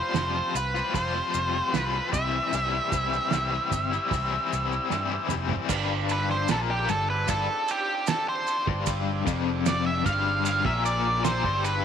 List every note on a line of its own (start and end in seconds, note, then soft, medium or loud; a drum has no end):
0.00 0.14 F3 medium
0.00 0.16 G3 medium
0.00 0.17 C4 medium
0.00 2.10 C4 medium
0.00 0.16 F4 medium
0.00 2.09 F4 medium
0.00 2.11 G4 medium
0.00 0.56 C5 medium
0.00 2.11 F5 medium
0.14 0.40 F1 medium
0.14 0.55 F3 medium
0.14 0.37 G3 medium
0.14 0.36 C4 medium
0.14 0.34 F4 loud
0.14 snare medium
0.14 open hi-hat soft
0.14 maracas medium
0.35 0.56 G3 soft
0.35 0.56 C4 medium
0.35 0.56 F4 medium
0.55 0.80 C2 medium
0.55 0.94 B4 medium
0.55 muted overdriven electric guitar stroke soft
0.55 maracas medium
0.74 0.95 G3 medium
0.74 0.96 C4 medium
0.74 0.96 F4 medium
0.74 maracas soft
0.94 1.20 F1 medium
0.94 1.54 F3 medium
0.94 1.17 G3 medium
0.94 1.15 C4 medium
0.94 1.13 F4 medium
0.94 1.71 C5 medium
0.94 kick loud
0.94 open hi-hat soft
0.94 maracas medium
1.14 1.74 G3 medium
1.14 1.75 C4 medium
1.14 1.75 F4 medium
1.34 1.60 F1 medium
1.34 maracas medium
1.71 1.99 C2 medium
1.71 2.11 F3 medium
1.71 1.96 G3 medium
1.71 2.09 B4 medium
1.71 snare medium
1.71 open hi-hat soft
1.71 maracas medium
1.76 1.95 C4 medium
1.76 1.92 F4 medium
1.93 2.14 G3 medium
1.93 2.14 C4 medium
1.93 2.11 F4 medium
2.12 2.39 C2 medium
2.12 2.51 C3 medium
2.12 2.52 E3 medium
2.12 2.34 G3 medium
2.12 2.33 C4 medium
2.12 5.68 E4 medium
2.12 2.32 E4 medium
2.12 5.67 G4 medium
2.12 5.68 C5 medium
2.12 5.67 D5 medium
2.12 5.26 E5 loud
2.12 kick medium
2.12 maracas medium
2.33 2.53 G3 medium
2.33 2.54 C4 medium
2.33 2.54 E4 medium
2.53 2.78 C2 medium
2.53 3.30 C3 loud
2.53 2.91 E3 medium
2.53 2.92 G3 loud
2.53 2.92 C4 loud
2.53 2.94 E4 medium
2.53 open hi-hat soft
2.53 maracas medium
2.92 3.18 C2 medium
2.92 3.31 E3 medium
2.92 3.31 G3 medium
2.92 3.32 C4 medium
2.92 3.33 E4 medium
2.92 kick medium
2.92 maracas medium
3.13 maracas soft
3.31 3.58 C2 medium
3.31 3.91 C3 loud
3.31 3.71 E3 medium
3.31 3.53 G3 medium
3.31 3.51 C4 medium
3.31 3.49 E4 medium
3.31 snare medium
3.31 open hi-hat soft
3.31 maracas medium
3.50 3.72 G3 medium
3.50 3.72 C4 medium
3.50 3.72 E4 medium
3.71 3.97 G1 medium
3.71 muted overdriven electric guitar stroke soft
3.71 kick medium
3.71 maracas medium
3.91 4.11 G3 medium
3.91 4.12 C4 medium
3.91 4.13 E4 medium
3.91 maracas soft
4.11 4.37 C2 medium
4.11 4.71 E3 medium
4.11 4.34 G3 medium
4.11 4.32 C4 medium
4.11 4.31 E4 medium
4.11 kick loud
4.11 open hi-hat soft
4.11 maracas medium
4.32 4.90 G3 medium
4.32 4.91 C4 medium
4.32 4.92 E4 medium
4.53 4.78 C2 medium
4.53 maracas medium
4.72 maracas soft
4.90 5.17 G2 medium
4.90 5.50 C3 medium
4.90 5.29 E3 medium
4.90 5.12 G3 medium
4.90 5.11 C4 medium
4.90 5.09 E4 medium
4.90 snare soft
4.90 maracas medium
5.10 5.30 G3 medium
5.10 5.31 C4 medium
5.10 5.32 E4 medium
5.29 5.56 F1 medium
5.29 5.67 E3 medium
5.29 5.51 G3 medium
5.29 5.50 C4 medium
5.29 mid tom medium
5.29 maracas medium
5.33 5.47 E4 medium
5.49 5.69 G3 medium
5.49 5.68 C4 medium
5.49 5.67 E4 medium
5.49 floor tom medium
5.69 6.45 G1 medium
5.69 6.48 G2 loud
5.69 11.85 C4 medium
5.69 11.85 D4 medium
5.69 11.85 F4 medium
5.69 11.85 G4 medium
5.69 11.85 D5 medium
5.69 kick loud
5.69 crash loud
5.69 maracas loud
6.09 6.29 B4 medium
6.09 ride medium
6.09 maracas medium
6.29 6.49 C5 loud
6.29 snare soft
6.48 6.86 A#1 medium
6.48 6.88 A#2 loud
6.48 6.57 A4 medium
6.48 snare loud
6.48 ride medium
6.48 maracas medium
6.71 6.90 G4 medium
6.89 7.26 G1 medium
6.89 7.21 G2 medium
6.89 7.10 A4 medium
6.89 ride medium
6.89 maracas medium
7.10 7.30 B4 medium
7.27 7.47 G1 medium
7.27 7.47 G2 medium
7.27 7.70 A4 medium
7.27 kick loud
7.27 ride medium
7.27 maracas medium
7.68 8.10 G4 medium
7.68 ride medium
7.68 maracas medium
8.07 8.26 A4 medium
8.07 snare loud
8.07 ride medium
8.07 maracas medium
8.29 8.65 C5 medium
8.47 ride medium
8.47 maracas medium
8.67 9.23 G1 medium
8.67 9.25 G2 loud
8.67 kick loud
8.86 kick loud
8.86 ride medium
8.86 maracas loud
9.26 10.02 F1 medium
9.26 10.04 F2 loud
9.26 kick loud
9.26 ride medium
9.26 maracas medium
9.66 9.85 D5 loud
9.66 snare loud
9.66 ride medium
9.66 maracas medium
9.86 10.05 E5 medium
10.05 10.61 G1 medium
10.05 10.63 G2 loud
10.05 10.44 F5 loud
10.05 kick loud
10.05 ride medium
10.05 maracas medium
10.45 10.65 F5 medium
10.45 ride loud
10.45 maracas medium
10.65 11.40 A#1 loud
10.65 11.43 A#2 medium
10.65 10.84 E5 medium
10.65 kick loud
10.85 11.22 D5 loud
10.85 ride medium
10.85 maracas medium
11.24 11.64 C5 medium
11.24 snare loud
11.24 ride loud
11.24 maracas medium
11.43 11.85 G1 medium
11.43 11.85 G2 medium
11.43 kick medium
11.64 11.85 B4 medium
11.64 ride medium
11.64 maracas medium